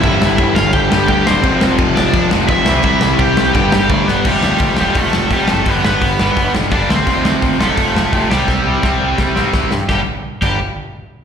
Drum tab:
CC |x-x-x-x-|x-x-x-x-|x-x-x-x-|x-------|
HH |--------|--------|--------|--o-o-o-|
SD |-o-o-o-o|-o-o-o-o|-o-o-o-o|-o-o-o-o|
BD |o-o-o-o-|o-o-o-o-|o-o-o-o-|o-o-o-o-|

CC |--------|--------|--------|---x----|
HH |o-o-o-o-|o-o-o-o-|--------|--------|
SD |-o-o-o-o|-o-o-o-o|o-o-oooo|o-------|
BD |o-o-o-o-|o-o-o-o-|o-o-o-o-|o--o----|